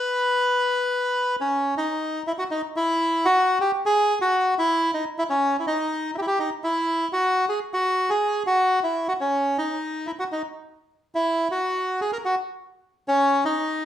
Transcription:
Already playing: B4
1.41 C#4
1.77 D#4
2.27 E4
2.38 F#4
2.51 D#4
2.76 E4
3.25 F#4
3.61 G4
3.86 G#4
4.21 F#4
4.59 E4
4.94 D#4
5.19 E4
5.30 C#4
5.59 E4
5.67 D#4
6.18 E4 G4
6.27 G4
6.39 D#4
6.64 E4
7.13 F#4
7.49 G#4
7.74 F#4
8.10 G#4
8.47 F#4
8.84 E4
9.08 F#4
9.21 C#4
9.58 D#4
10.07 E4
10.19 F#4
10.32 D#4
11.15 E4
11.51 F#4
12.01 G#4
12.13 A#4
12.25 F#4
13.08 C#4
13.45 D#4

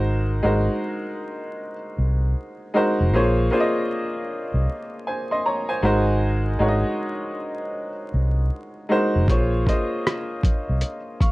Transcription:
Already playing: G#1 G#3 D#4 F#4 A#4 C5
0.43 G#1 G#3 D#4 F#4 A#4 C5
1.98 C2
2.74 G#3 D#4 F#4 A#4 C5
3.00 F1
3.14 A#1 A#3 F4 G#4 C5 C#5
3.51 A#3 F4 G#4 C5 D5
3.60 D#5
4.54 C2
5.07 C5 G#5
5.31 D#5 C6
5.46 C#5 A#5
5.69 C5 G#5
5.83 G#1 G#3 D#4 F#4 A#4 C5
6.59 G#1 G#3 D#4 F#4 A#4 C#5
6.68 D#5
8.14 C2
8.89 G#3 D#4 F#4 A#4 C5
9.16 F1
9.28 A#1 A#3 F4 G#4 C5 C#5, kick, closed hi-hat
9.66 A#3 F4 G#4 C5 D#5, kick, closed hi-hat
10.07 cross-stick, closed hi-hat
10.43 kick, closed hi-hat
10.69 C2
10.81 closed hi-hat
11.20 F5 C#6, kick, closed hi-hat

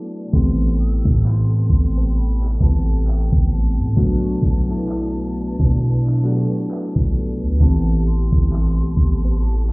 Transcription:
Already playing: F#3 A3 B3 D4 E4 A4 D5
0.33 A1 C3 E3 A3 B3 C4 G4 A4 G5 C6, kick
0.78 E6, closed hi-hat
1.05 A2, kick
1.25 C6 G6, clap
1.70 A1 C6, kick
1.98 cross-stick
2.15 B5, closed hi-hat
2.43 clap
2.60 A1 E3 A3 B3 C4 G4 A5, kick, closed hi-hat
3.07 G5, clap
3.32 A1, kick
3.52 A5 C7, closed hi-hat
3.78 A2
3.82 closed hi-hat
3.96 B1 F#3 A3 B3 D4 F#4 B4 A5, kick
4.42 B1, kick, closed hi-hat
4.68 F#3 A3 B3 D4 E4
4.89 clap
5.60 B2, kick, cross-stick
6.07 clap
6.23 F#3 A3 B3 D4 G4 F#6
6.33 A4
6.56 A6
6.71 clap
6.96 B1, kick
7.15 closed hi-hat, open hi-hat
7.30 closed hi-hat
7.42 D2
7.60 A1 E3 A3 B3 C4 G4 A4 A5 A6, kick
7.92 C7
8.07 C6
8.32 A1, kick
8.53 clap
8.78 B1
8.96 A1, kick, closed hi-hat
9.25 cross-stick
9.42 A5 B6, closed hi-hat

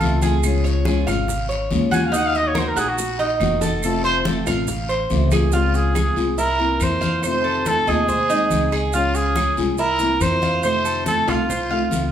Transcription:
Already playing: F4 A4
0.01 C#2 C3 F3 A3 C4 F4, high conga, short guiro, claves, maracas
0.21 A3 C4 F4 G#4, high conga, short guiro, maracas
0.43 C#3 F3 G#3 C#4 F4, high conga, long guiro, claves, maracas
0.64 C#5, high conga, maracas
0.85 C#3 F3 G#3 C#4 F4 G#4, high conga, short guiro, maracas
1.07 G#1 G#3 C#4 F4 F5, high conga, low conga, short guiro, claves, maracas
1.28 muted nylon-string guitar stroke, high conga, low conga, long guiro, maracas
1.49 C#5, high conga, maracas
1.70 D#2 C#3 F3 G#3 C#4 F4, high conga, short guiro, maracas
1.91 G#3 C#4 F4 F#4 G#5, high conga, short guiro, claves, maracas
2.05 F5
2.12 D#3 A#3 D#4 F#4, high conga, long guiro, maracas
2.16 F#5
2.26 F5
2.35 D#5, high conga, maracas
2.47 C#5
2.55 D#3 A#3 D#4 F#4 A#4 C5, high conga, short guiro, claves, maracas
2.68 A#4
2.76 A#1 A#3 D#4 F#4 G#4, high conga, short guiro, maracas
2.89 F#4
2.98 muted nylon-string guitar stroke, high conga, long guiro, maracas
3.19 D#4, high conga, maracas
3.40 F1 D#3 A#3 D#4 F#4, high conga, short guiro, claves, maracas
3.61 A#3 D#4 F#4 A4, high conga, short guiro, maracas
3.82 C3 F3 A3 C4 F4 A4, high conga, long guiro, claves, maracas
4.04 C5, high conga, maracas
4.25 C3 F3 A3 C4 F4 A4, high conga, short guiro, maracas
4.46 A1 A3 C4 F4 F5, high conga, low conga, short guiro, claves, maracas
4.67 muted nylon-string guitar stroke, high conga, low conga, long guiro, maracas
4.89 C5, high conga, maracas
5.10 C#2 C3 F3 A3 C4 F4, high conga, short guiro, maracas
5.31 A3 C4 F4 G#4, high conga, short guiro, claves, maracas
5.52 C#3 F3 G#3 C4 F4, high conga, long guiro, maracas
5.74 G#4, maracas
5.95 F3 G#3 C4 F4 G#4, high conga, short guiro, claves, maracas
6.16 C2 F3 G#3 C4 F4, short guiro, maracas
6.37 E4 A#4, muted nylon-string guitar stroke, high conga, long guiro, maracas
6.59 E3 A#3 C4 E4 A#4, high conga
6.80 F2 E3 A#3 C4 E4 C5, high conga, short guiro, claves, maracas
7.01 F5, high conga, short guiro, maracas
7.23 C3 D#3 A3 C4 F4 C5, high conga, long guiro, claves, maracas
7.44 A4, high conga
7.66 D#3 A3 C4 F4 A4, high conga, short guiro, maracas
7.87 D#2 D#3 A3 C4 F4 G#4 D#5, high conga, low conga, short guiro, claves, maracas
8.08 C5, muted nylon-string guitar stroke, high conga, low conga, long guiro, maracas
8.30 G#3 C4 D#4, high conga, maracas
8.50 C#2 D#3 G#3 C4, high conga, short guiro, maracas
8.72 G#4, high conga, short guiro, claves, maracas
8.93 C#3 F3 G#3 C#4 F4, high conga, long guiro, maracas
9.15 G#4, high conga, maracas
9.36 F3 G#3 C#4 F4 G#4, high conga, short guiro, claves, maracas
9.57 C2 F3 G#3 C#4 F4, high conga, short guiro, maracas
9.78 E4 A#4, muted nylon-string guitar stroke, high conga, long guiro, maracas
9.99 E3 A#3 C4 E4 A#4, high conga, maracas
10.20 F2 E3 A#3 C4 E4 C5, high conga, short guiro, claves, maracas
10.42 F5, high conga, short guiro, maracas
10.63 C3 D#3 A3 C4 F4 C5, high conga, long guiro, claves, maracas
10.85 A4, high conga, maracas
11.06 D#3 A3 C4 F4 A4, high conga, short guiro, maracas
11.27 C2 D#3 A3 C4 F4 F5, high conga, low conga, short guiro, claves, maracas
11.49 C5, muted nylon-string guitar stroke, high conga, low conga, long guiro, maracas
11.71 D#3 A3 C4 F4, high conga
11.90 C#2 D#3 A3 C4, high conga, short guiro, maracas
11.95 F4

